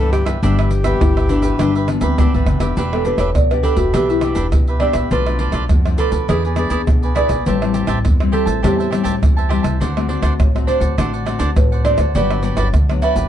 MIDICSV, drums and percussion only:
0, 0, Header, 1, 4, 480
1, 0, Start_track
1, 0, Key_signature, 1, "minor"
1, 0, Tempo, 586510
1, 350, Time_signature, 4, 2, 24, 8
1, 10872, End_track
2, 0, Start_track
2, 0, Title_t, "Pandeiro"
2, 0, Note_on_c, 9, 54, 33
2, 82, Note_off_c, 9, 54, 0
2, 105, Note_on_c, 9, 54, 57
2, 187, Note_off_c, 9, 54, 0
2, 216, Note_on_c, 9, 54, 71
2, 298, Note_off_c, 9, 54, 0
2, 354, Note_on_c, 9, 54, 87
2, 436, Note_off_c, 9, 54, 0
2, 481, Note_on_c, 9, 54, 34
2, 563, Note_off_c, 9, 54, 0
2, 578, Note_on_c, 9, 54, 59
2, 660, Note_off_c, 9, 54, 0
2, 690, Note_on_c, 9, 54, 64
2, 772, Note_off_c, 9, 54, 0
2, 829, Note_on_c, 9, 54, 80
2, 911, Note_off_c, 9, 54, 0
2, 958, Note_on_c, 9, 54, 35
2, 1040, Note_off_c, 9, 54, 0
2, 1058, Note_on_c, 9, 54, 59
2, 1139, Note_off_c, 9, 54, 0
2, 1166, Note_on_c, 9, 54, 65
2, 1248, Note_off_c, 9, 54, 0
2, 1303, Note_on_c, 9, 54, 87
2, 1385, Note_off_c, 9, 54, 0
2, 1435, Note_on_c, 9, 54, 36
2, 1516, Note_off_c, 9, 54, 0
2, 1538, Note_on_c, 9, 54, 54
2, 1620, Note_off_c, 9, 54, 0
2, 1645, Note_on_c, 9, 54, 73
2, 1727, Note_off_c, 9, 54, 0
2, 1787, Note_on_c, 9, 54, 80
2, 1869, Note_off_c, 9, 54, 0
2, 1918, Note_on_c, 9, 54, 36
2, 2000, Note_off_c, 9, 54, 0
2, 2017, Note_on_c, 9, 54, 57
2, 2099, Note_off_c, 9, 54, 0
2, 2130, Note_on_c, 9, 54, 74
2, 2212, Note_off_c, 9, 54, 0
2, 2266, Note_on_c, 9, 54, 77
2, 2348, Note_off_c, 9, 54, 0
2, 2398, Note_on_c, 9, 54, 33
2, 2480, Note_off_c, 9, 54, 0
2, 2495, Note_on_c, 9, 54, 55
2, 2576, Note_off_c, 9, 54, 0
2, 2603, Note_on_c, 9, 54, 61
2, 2685, Note_off_c, 9, 54, 0
2, 2742, Note_on_c, 9, 54, 70
2, 2824, Note_off_c, 9, 54, 0
2, 2873, Note_on_c, 9, 54, 33
2, 2955, Note_off_c, 9, 54, 0
2, 2975, Note_on_c, 9, 54, 59
2, 3057, Note_off_c, 9, 54, 0
2, 3082, Note_on_c, 9, 54, 63
2, 3164, Note_off_c, 9, 54, 0
2, 3223, Note_on_c, 9, 54, 78
2, 3304, Note_off_c, 9, 54, 0
2, 3353, Note_on_c, 9, 54, 34
2, 3434, Note_off_c, 9, 54, 0
2, 3448, Note_on_c, 9, 54, 56
2, 3530, Note_off_c, 9, 54, 0
2, 3560, Note_on_c, 9, 54, 67
2, 3642, Note_off_c, 9, 54, 0
2, 3700, Note_on_c, 9, 54, 76
2, 3782, Note_off_c, 9, 54, 0
2, 3826, Note_on_c, 9, 54, 33
2, 3908, Note_off_c, 9, 54, 0
2, 3927, Note_on_c, 9, 54, 58
2, 4009, Note_off_c, 9, 54, 0
2, 4038, Note_on_c, 9, 54, 69
2, 4120, Note_off_c, 9, 54, 0
2, 4182, Note_on_c, 9, 54, 74
2, 4264, Note_off_c, 9, 54, 0
2, 4309, Note_on_c, 9, 54, 32
2, 4391, Note_off_c, 9, 54, 0
2, 4410, Note_on_c, 9, 54, 56
2, 4492, Note_off_c, 9, 54, 0
2, 4519, Note_on_c, 9, 54, 61
2, 4601, Note_off_c, 9, 54, 0
2, 4660, Note_on_c, 9, 54, 74
2, 4742, Note_off_c, 9, 54, 0
2, 4792, Note_on_c, 9, 54, 32
2, 4874, Note_off_c, 9, 54, 0
2, 4893, Note_on_c, 9, 54, 54
2, 4975, Note_off_c, 9, 54, 0
2, 5007, Note_on_c, 9, 54, 67
2, 5088, Note_off_c, 9, 54, 0
2, 5147, Note_on_c, 9, 54, 87
2, 5229, Note_off_c, 9, 54, 0
2, 5276, Note_on_c, 9, 54, 35
2, 5357, Note_off_c, 9, 54, 0
2, 5370, Note_on_c, 9, 54, 50
2, 5452, Note_off_c, 9, 54, 0
2, 5485, Note_on_c, 9, 54, 69
2, 5567, Note_off_c, 9, 54, 0
2, 5625, Note_on_c, 9, 54, 77
2, 5707, Note_off_c, 9, 54, 0
2, 5754, Note_on_c, 9, 54, 35
2, 5836, Note_off_c, 9, 54, 0
2, 5858, Note_on_c, 9, 54, 56
2, 5939, Note_off_c, 9, 54, 0
2, 5967, Note_on_c, 9, 54, 66
2, 6049, Note_off_c, 9, 54, 0
2, 6108, Note_on_c, 9, 54, 79
2, 6189, Note_off_c, 9, 54, 0
2, 6237, Note_on_c, 9, 54, 34
2, 6319, Note_off_c, 9, 54, 0
2, 6336, Note_on_c, 9, 54, 57
2, 6417, Note_off_c, 9, 54, 0
2, 6443, Note_on_c, 9, 54, 62
2, 6525, Note_off_c, 9, 54, 0
2, 6586, Note_on_c, 9, 54, 75
2, 6668, Note_off_c, 9, 54, 0
2, 6714, Note_on_c, 9, 54, 32
2, 6796, Note_off_c, 9, 54, 0
2, 6816, Note_on_c, 9, 54, 57
2, 6898, Note_off_c, 9, 54, 0
2, 6932, Note_on_c, 9, 54, 65
2, 7014, Note_off_c, 9, 54, 0
2, 7072, Note_on_c, 9, 54, 84
2, 7154, Note_off_c, 9, 54, 0
2, 7203, Note_on_c, 9, 54, 35
2, 7285, Note_off_c, 9, 54, 0
2, 7304, Note_on_c, 9, 54, 56
2, 7386, Note_off_c, 9, 54, 0
2, 7408, Note_on_c, 9, 54, 68
2, 7490, Note_off_c, 9, 54, 0
2, 7552, Note_on_c, 9, 54, 78
2, 7634, Note_off_c, 9, 54, 0
2, 7678, Note_on_c, 9, 54, 33
2, 7760, Note_off_c, 9, 54, 0
2, 7779, Note_on_c, 9, 54, 57
2, 7861, Note_off_c, 9, 54, 0
2, 7892, Note_on_c, 9, 54, 67
2, 7974, Note_off_c, 9, 54, 0
2, 8031, Note_on_c, 9, 54, 80
2, 8113, Note_off_c, 9, 54, 0
2, 8160, Note_on_c, 9, 54, 34
2, 8241, Note_off_c, 9, 54, 0
2, 8258, Note_on_c, 9, 54, 56
2, 8339, Note_off_c, 9, 54, 0
2, 8369, Note_on_c, 9, 54, 60
2, 8451, Note_off_c, 9, 54, 0
2, 8509, Note_on_c, 9, 54, 77
2, 8591, Note_off_c, 9, 54, 0
2, 8641, Note_on_c, 9, 54, 33
2, 8722, Note_off_c, 9, 54, 0
2, 8741, Note_on_c, 9, 54, 56
2, 8823, Note_off_c, 9, 54, 0
2, 8849, Note_on_c, 9, 54, 65
2, 8931, Note_off_c, 9, 54, 0
2, 8989, Note_on_c, 9, 54, 88
2, 9070, Note_off_c, 9, 54, 0
2, 9114, Note_on_c, 9, 54, 35
2, 9196, Note_off_c, 9, 54, 0
2, 9219, Note_on_c, 9, 54, 54
2, 9301, Note_off_c, 9, 54, 0
2, 9326, Note_on_c, 9, 54, 72
2, 9408, Note_off_c, 9, 54, 0
2, 9465, Note_on_c, 9, 54, 84
2, 9547, Note_off_c, 9, 54, 0
2, 9595, Note_on_c, 9, 54, 35
2, 9676, Note_off_c, 9, 54, 0
2, 9696, Note_on_c, 9, 54, 57
2, 9778, Note_off_c, 9, 54, 0
2, 9802, Note_on_c, 9, 54, 69
2, 9884, Note_off_c, 9, 54, 0
2, 9943, Note_on_c, 9, 54, 74
2, 10025, Note_off_c, 9, 54, 0
2, 10070, Note_on_c, 9, 54, 36
2, 10152, Note_off_c, 9, 54, 0
2, 10170, Note_on_c, 9, 54, 60
2, 10252, Note_off_c, 9, 54, 0
2, 10285, Note_on_c, 9, 54, 68
2, 10367, Note_off_c, 9, 54, 0
2, 10424, Note_on_c, 9, 54, 76
2, 10506, Note_off_c, 9, 54, 0
2, 10553, Note_on_c, 9, 54, 32
2, 10635, Note_off_c, 9, 54, 0
2, 10655, Note_on_c, 9, 54, 56
2, 10737, Note_off_c, 9, 54, 0
2, 10769, Note_on_c, 9, 54, 67
2, 10850, Note_off_c, 9, 54, 0
2, 10872, End_track
3, 0, Start_track
3, 0, Title_t, "Tamborim"
3, 105, Note_on_c, 9, 60, 79
3, 187, Note_off_c, 9, 60, 0
3, 216, Note_on_c, 9, 60, 82
3, 298, Note_off_c, 9, 60, 0
3, 481, Note_on_c, 9, 60, 83
3, 563, Note_off_c, 9, 60, 0
3, 690, Note_on_c, 9, 60, 80
3, 772, Note_off_c, 9, 60, 0
3, 829, Note_on_c, 9, 60, 81
3, 911, Note_off_c, 9, 60, 0
3, 958, Note_on_c, 9, 60, 78
3, 1040, Note_off_c, 9, 60, 0
3, 1303, Note_on_c, 9, 60, 89
3, 1385, Note_off_c, 9, 60, 0
3, 1538, Note_on_c, 9, 60, 76
3, 1620, Note_off_c, 9, 60, 0
3, 1787, Note_on_c, 9, 60, 79
3, 1869, Note_off_c, 9, 60, 0
3, 2017, Note_on_c, 9, 60, 79
3, 2099, Note_off_c, 9, 60, 0
3, 2130, Note_on_c, 9, 60, 76
3, 2212, Note_off_c, 9, 60, 0
3, 2398, Note_on_c, 9, 60, 74
3, 2480, Note_off_c, 9, 60, 0
3, 2603, Note_on_c, 9, 60, 74
3, 2685, Note_off_c, 9, 60, 0
3, 2742, Note_on_c, 9, 60, 73
3, 2824, Note_off_c, 9, 60, 0
3, 2873, Note_on_c, 9, 60, 73
3, 2955, Note_off_c, 9, 60, 0
3, 3223, Note_on_c, 9, 60, 81
3, 3304, Note_off_c, 9, 60, 0
3, 3448, Note_on_c, 9, 60, 78
3, 3530, Note_off_c, 9, 60, 0
3, 3700, Note_on_c, 9, 60, 75
3, 3782, Note_off_c, 9, 60, 0
3, 3927, Note_on_c, 9, 60, 77
3, 4009, Note_off_c, 9, 60, 0
3, 4038, Note_on_c, 9, 60, 81
3, 4120, Note_off_c, 9, 60, 0
3, 4309, Note_on_c, 9, 60, 77
3, 4391, Note_off_c, 9, 60, 0
3, 4519, Note_on_c, 9, 60, 69
3, 4601, Note_off_c, 9, 60, 0
3, 4660, Note_on_c, 9, 60, 74
3, 4742, Note_off_c, 9, 60, 0
3, 4792, Note_on_c, 9, 60, 74
3, 4874, Note_off_c, 9, 60, 0
3, 5147, Note_on_c, 9, 60, 82
3, 5229, Note_off_c, 9, 60, 0
3, 5370, Note_on_c, 9, 60, 76
3, 5452, Note_off_c, 9, 60, 0
3, 5625, Note_on_c, 9, 60, 76
3, 5707, Note_off_c, 9, 60, 0
3, 5858, Note_on_c, 9, 60, 77
3, 5939, Note_off_c, 9, 60, 0
3, 5967, Note_on_c, 9, 60, 74
3, 6049, Note_off_c, 9, 60, 0
3, 6237, Note_on_c, 9, 60, 77
3, 6319, Note_off_c, 9, 60, 0
3, 6443, Note_on_c, 9, 60, 76
3, 6525, Note_off_c, 9, 60, 0
3, 6586, Note_on_c, 9, 60, 73
3, 6668, Note_off_c, 9, 60, 0
3, 6714, Note_on_c, 9, 60, 78
3, 6796, Note_off_c, 9, 60, 0
3, 7072, Note_on_c, 9, 60, 85
3, 7154, Note_off_c, 9, 60, 0
3, 7304, Note_on_c, 9, 60, 79
3, 7386, Note_off_c, 9, 60, 0
3, 7552, Note_on_c, 9, 60, 84
3, 7634, Note_off_c, 9, 60, 0
3, 7779, Note_on_c, 9, 60, 81
3, 7861, Note_off_c, 9, 60, 0
3, 7892, Note_on_c, 9, 60, 81
3, 7974, Note_off_c, 9, 60, 0
3, 8160, Note_on_c, 9, 60, 75
3, 8241, Note_off_c, 9, 60, 0
3, 8369, Note_on_c, 9, 60, 78
3, 8451, Note_off_c, 9, 60, 0
3, 8509, Note_on_c, 9, 60, 80
3, 8591, Note_off_c, 9, 60, 0
3, 8641, Note_on_c, 9, 60, 75
3, 8722, Note_off_c, 9, 60, 0
3, 8989, Note_on_c, 9, 60, 85
3, 9070, Note_off_c, 9, 60, 0
3, 9219, Note_on_c, 9, 60, 72
3, 9301, Note_off_c, 9, 60, 0
3, 9465, Note_on_c, 9, 60, 78
3, 9547, Note_off_c, 9, 60, 0
3, 9696, Note_on_c, 9, 60, 77
3, 9778, Note_off_c, 9, 60, 0
3, 9802, Note_on_c, 9, 60, 82
3, 9884, Note_off_c, 9, 60, 0
3, 10070, Note_on_c, 9, 60, 77
3, 10152, Note_off_c, 9, 60, 0
3, 10285, Note_on_c, 9, 60, 77
3, 10367, Note_off_c, 9, 60, 0
3, 10424, Note_on_c, 9, 60, 82
3, 10506, Note_off_c, 9, 60, 0
3, 10553, Note_on_c, 9, 60, 81
3, 10635, Note_off_c, 9, 60, 0
3, 10872, End_track
4, 0, Start_track
4, 0, Title_t, "Drums"
4, 0, Note_on_c, 9, 82, 35
4, 82, Note_off_c, 9, 82, 0
4, 105, Note_on_c, 9, 82, 70
4, 187, Note_off_c, 9, 82, 0
4, 216, Note_on_c, 9, 82, 83
4, 216, Note_on_c, 9, 87, 36
4, 298, Note_off_c, 9, 82, 0
4, 298, Note_off_c, 9, 87, 0
4, 354, Note_on_c, 9, 82, 81
4, 354, Note_on_c, 9, 87, 60
4, 436, Note_off_c, 9, 82, 0
4, 436, Note_off_c, 9, 87, 0
4, 481, Note_on_c, 9, 82, 35
4, 563, Note_off_c, 9, 82, 0
4, 578, Note_on_c, 9, 82, 72
4, 660, Note_off_c, 9, 82, 0
4, 690, Note_on_c, 9, 82, 78
4, 690, Note_on_c, 9, 87, 30
4, 772, Note_off_c, 9, 82, 0
4, 772, Note_off_c, 9, 87, 0
4, 829, Note_on_c, 9, 82, 78
4, 829, Note_on_c, 9, 87, 100
4, 911, Note_off_c, 9, 82, 0
4, 911, Note_off_c, 9, 87, 0
4, 958, Note_on_c, 9, 82, 35
4, 1040, Note_off_c, 9, 82, 0
4, 1058, Note_on_c, 9, 82, 68
4, 1058, Note_on_c, 9, 87, 29
4, 1139, Note_off_c, 9, 82, 0
4, 1139, Note_off_c, 9, 87, 0
4, 1166, Note_on_c, 9, 82, 78
4, 1166, Note_on_c, 9, 87, 34
4, 1248, Note_off_c, 9, 82, 0
4, 1248, Note_off_c, 9, 87, 0
4, 1303, Note_on_c, 9, 82, 83
4, 1303, Note_on_c, 9, 87, 64
4, 1385, Note_off_c, 9, 82, 0
4, 1385, Note_off_c, 9, 87, 0
4, 1435, Note_on_c, 9, 82, 36
4, 1516, Note_off_c, 9, 82, 0
4, 1538, Note_on_c, 9, 82, 68
4, 1620, Note_off_c, 9, 82, 0
4, 1645, Note_on_c, 9, 82, 89
4, 1645, Note_on_c, 9, 87, 37
4, 1727, Note_off_c, 9, 82, 0
4, 1727, Note_off_c, 9, 87, 0
4, 1787, Note_on_c, 9, 82, 85
4, 1787, Note_on_c, 9, 87, 100
4, 1869, Note_off_c, 9, 82, 0
4, 1869, Note_off_c, 9, 87, 0
4, 1918, Note_on_c, 9, 82, 35
4, 2000, Note_off_c, 9, 82, 0
4, 2017, Note_on_c, 9, 82, 66
4, 2099, Note_off_c, 9, 82, 0
4, 2130, Note_on_c, 9, 82, 76
4, 2130, Note_on_c, 9, 87, 35
4, 2212, Note_off_c, 9, 82, 0
4, 2212, Note_off_c, 9, 87, 0
4, 2266, Note_on_c, 9, 82, 77
4, 2266, Note_on_c, 9, 87, 57
4, 2348, Note_off_c, 9, 82, 0
4, 2348, Note_off_c, 9, 87, 0
4, 2398, Note_on_c, 9, 82, 31
4, 2480, Note_off_c, 9, 82, 0
4, 2495, Note_on_c, 9, 82, 62
4, 2576, Note_off_c, 9, 82, 0
4, 2603, Note_on_c, 9, 82, 79
4, 2603, Note_on_c, 9, 87, 30
4, 2685, Note_off_c, 9, 82, 0
4, 2685, Note_off_c, 9, 87, 0
4, 2742, Note_on_c, 9, 82, 76
4, 2742, Note_on_c, 9, 87, 93
4, 2824, Note_off_c, 9, 82, 0
4, 2824, Note_off_c, 9, 87, 0
4, 2873, Note_on_c, 9, 82, 31
4, 2955, Note_off_c, 9, 82, 0
4, 2975, Note_on_c, 9, 82, 70
4, 2975, Note_on_c, 9, 87, 31
4, 3057, Note_off_c, 9, 82, 0
4, 3057, Note_off_c, 9, 87, 0
4, 3082, Note_on_c, 9, 82, 73
4, 3082, Note_on_c, 9, 87, 31
4, 3164, Note_off_c, 9, 82, 0
4, 3164, Note_off_c, 9, 87, 0
4, 3223, Note_on_c, 9, 82, 77
4, 3223, Note_on_c, 9, 87, 55
4, 3304, Note_off_c, 9, 82, 0
4, 3304, Note_off_c, 9, 87, 0
4, 3353, Note_on_c, 9, 82, 36
4, 3434, Note_off_c, 9, 82, 0
4, 3448, Note_on_c, 9, 82, 65
4, 3530, Note_off_c, 9, 82, 0
4, 3560, Note_on_c, 9, 82, 82
4, 3560, Note_on_c, 9, 87, 34
4, 3642, Note_off_c, 9, 82, 0
4, 3642, Note_off_c, 9, 87, 0
4, 3700, Note_on_c, 9, 82, 75
4, 3700, Note_on_c, 9, 87, 91
4, 3782, Note_off_c, 9, 82, 0
4, 3782, Note_off_c, 9, 87, 0
4, 3826, Note_on_c, 9, 82, 34
4, 3908, Note_off_c, 9, 82, 0
4, 4038, Note_on_c, 9, 82, 83
4, 4038, Note_on_c, 9, 87, 32
4, 4120, Note_off_c, 9, 82, 0
4, 4120, Note_off_c, 9, 87, 0
4, 4182, Note_on_c, 9, 82, 77
4, 4182, Note_on_c, 9, 87, 54
4, 4264, Note_off_c, 9, 82, 0
4, 4264, Note_off_c, 9, 87, 0
4, 4309, Note_on_c, 9, 82, 30
4, 4391, Note_off_c, 9, 82, 0
4, 4519, Note_on_c, 9, 82, 79
4, 4519, Note_on_c, 9, 87, 30
4, 4601, Note_off_c, 9, 82, 0
4, 4601, Note_off_c, 9, 87, 0
4, 4660, Note_on_c, 9, 82, 71
4, 4660, Note_on_c, 9, 87, 93
4, 4742, Note_off_c, 9, 82, 0
4, 4742, Note_off_c, 9, 87, 0
4, 4792, Note_on_c, 9, 82, 32
4, 4874, Note_off_c, 9, 82, 0
4, 4893, Note_on_c, 9, 82, 66
4, 4975, Note_off_c, 9, 82, 0
4, 5007, Note_on_c, 9, 82, 77
4, 5007, Note_on_c, 9, 87, 34
4, 5088, Note_off_c, 9, 82, 0
4, 5088, Note_off_c, 9, 87, 0
4, 5147, Note_on_c, 9, 82, 81
4, 5147, Note_on_c, 9, 87, 60
4, 5229, Note_off_c, 9, 82, 0
4, 5229, Note_off_c, 9, 87, 0
4, 5276, Note_on_c, 9, 82, 35
4, 5357, Note_off_c, 9, 82, 0
4, 5370, Note_on_c, 9, 82, 62
4, 5452, Note_off_c, 9, 82, 0
4, 5485, Note_on_c, 9, 82, 80
4, 5485, Note_on_c, 9, 87, 35
4, 5567, Note_off_c, 9, 82, 0
4, 5567, Note_off_c, 9, 87, 0
4, 5625, Note_on_c, 9, 82, 74
4, 5625, Note_on_c, 9, 87, 91
4, 5707, Note_off_c, 9, 82, 0
4, 5707, Note_off_c, 9, 87, 0
4, 5754, Note_on_c, 9, 82, 34
4, 5836, Note_off_c, 9, 82, 0
4, 5858, Note_on_c, 9, 82, 71
4, 5939, Note_off_c, 9, 82, 0
4, 5967, Note_on_c, 9, 82, 82
4, 5967, Note_on_c, 9, 87, 34
4, 6049, Note_off_c, 9, 82, 0
4, 6049, Note_off_c, 9, 87, 0
4, 6108, Note_on_c, 9, 82, 77
4, 6108, Note_on_c, 9, 87, 55
4, 6189, Note_off_c, 9, 82, 0
4, 6189, Note_off_c, 9, 87, 0
4, 6237, Note_on_c, 9, 82, 34
4, 6319, Note_off_c, 9, 82, 0
4, 6336, Note_on_c, 9, 82, 68
4, 6417, Note_off_c, 9, 82, 0
4, 6443, Note_on_c, 9, 82, 71
4, 6443, Note_on_c, 9, 87, 33
4, 6525, Note_off_c, 9, 82, 0
4, 6525, Note_off_c, 9, 87, 0
4, 6586, Note_on_c, 9, 82, 81
4, 6586, Note_on_c, 9, 87, 94
4, 6668, Note_off_c, 9, 82, 0
4, 6668, Note_off_c, 9, 87, 0
4, 6714, Note_on_c, 9, 82, 31
4, 6796, Note_off_c, 9, 82, 0
4, 6816, Note_on_c, 9, 87, 30
4, 6898, Note_off_c, 9, 87, 0
4, 6932, Note_on_c, 9, 82, 77
4, 6932, Note_on_c, 9, 87, 32
4, 7014, Note_off_c, 9, 82, 0
4, 7014, Note_off_c, 9, 87, 0
4, 7072, Note_on_c, 9, 82, 79
4, 7072, Note_on_c, 9, 87, 60
4, 7154, Note_off_c, 9, 82, 0
4, 7154, Note_off_c, 9, 87, 0
4, 7203, Note_on_c, 9, 82, 34
4, 7285, Note_off_c, 9, 82, 0
4, 7304, Note_on_c, 9, 82, 67
4, 7386, Note_off_c, 9, 82, 0
4, 7408, Note_on_c, 9, 82, 87
4, 7408, Note_on_c, 9, 87, 36
4, 7490, Note_off_c, 9, 82, 0
4, 7490, Note_off_c, 9, 87, 0
4, 7552, Note_on_c, 9, 82, 72
4, 7552, Note_on_c, 9, 87, 99
4, 7634, Note_off_c, 9, 82, 0
4, 7634, Note_off_c, 9, 87, 0
4, 7678, Note_on_c, 9, 82, 36
4, 7760, Note_off_c, 9, 82, 0
4, 7892, Note_on_c, 9, 82, 76
4, 7892, Note_on_c, 9, 87, 34
4, 7974, Note_off_c, 9, 82, 0
4, 7974, Note_off_c, 9, 87, 0
4, 8031, Note_on_c, 9, 82, 81
4, 8031, Note_on_c, 9, 87, 58
4, 8113, Note_off_c, 9, 82, 0
4, 8113, Note_off_c, 9, 87, 0
4, 8160, Note_on_c, 9, 82, 33
4, 8241, Note_off_c, 9, 82, 0
4, 8369, Note_on_c, 9, 82, 77
4, 8369, Note_on_c, 9, 87, 34
4, 8451, Note_off_c, 9, 82, 0
4, 8451, Note_off_c, 9, 87, 0
4, 8509, Note_on_c, 9, 82, 79
4, 8509, Note_on_c, 9, 87, 94
4, 8591, Note_off_c, 9, 82, 0
4, 8591, Note_off_c, 9, 87, 0
4, 8641, Note_on_c, 9, 82, 32
4, 8722, Note_off_c, 9, 82, 0
4, 8741, Note_on_c, 9, 82, 69
4, 8741, Note_on_c, 9, 87, 29
4, 8823, Note_off_c, 9, 82, 0
4, 8823, Note_off_c, 9, 87, 0
4, 8849, Note_on_c, 9, 82, 80
4, 8849, Note_on_c, 9, 87, 32
4, 8931, Note_off_c, 9, 82, 0
4, 8931, Note_off_c, 9, 87, 0
4, 8989, Note_on_c, 9, 82, 89
4, 8989, Note_on_c, 9, 87, 59
4, 9070, Note_off_c, 9, 82, 0
4, 9070, Note_off_c, 9, 87, 0
4, 9114, Note_on_c, 9, 82, 36
4, 9196, Note_off_c, 9, 82, 0
4, 9219, Note_on_c, 9, 82, 63
4, 9301, Note_off_c, 9, 82, 0
4, 9326, Note_on_c, 9, 82, 84
4, 9326, Note_on_c, 9, 87, 34
4, 9408, Note_off_c, 9, 82, 0
4, 9408, Note_off_c, 9, 87, 0
4, 9465, Note_on_c, 9, 82, 80
4, 9465, Note_on_c, 9, 87, 97
4, 9547, Note_off_c, 9, 82, 0
4, 9547, Note_off_c, 9, 87, 0
4, 9595, Note_on_c, 9, 82, 33
4, 9676, Note_off_c, 9, 82, 0
4, 9696, Note_on_c, 9, 82, 68
4, 9778, Note_off_c, 9, 82, 0
4, 9802, Note_on_c, 9, 82, 82
4, 9802, Note_on_c, 9, 87, 34
4, 9884, Note_off_c, 9, 82, 0
4, 9884, Note_off_c, 9, 87, 0
4, 9943, Note_on_c, 9, 82, 82
4, 9943, Note_on_c, 9, 87, 58
4, 10025, Note_off_c, 9, 82, 0
4, 10025, Note_off_c, 9, 87, 0
4, 10070, Note_on_c, 9, 82, 33
4, 10152, Note_off_c, 9, 82, 0
4, 10170, Note_on_c, 9, 82, 73
4, 10252, Note_off_c, 9, 82, 0
4, 10285, Note_on_c, 9, 82, 78
4, 10285, Note_on_c, 9, 87, 33
4, 10367, Note_off_c, 9, 82, 0
4, 10367, Note_off_c, 9, 87, 0
4, 10424, Note_on_c, 9, 82, 82
4, 10424, Note_on_c, 9, 87, 97
4, 10506, Note_off_c, 9, 82, 0
4, 10506, Note_off_c, 9, 87, 0
4, 10553, Note_on_c, 9, 82, 32
4, 10635, Note_off_c, 9, 82, 0
4, 10655, Note_on_c, 9, 82, 69
4, 10737, Note_off_c, 9, 82, 0
4, 10769, Note_on_c, 9, 82, 78
4, 10769, Note_on_c, 9, 87, 34
4, 10850, Note_off_c, 9, 82, 0
4, 10850, Note_off_c, 9, 87, 0
4, 10872, End_track
0, 0, End_of_file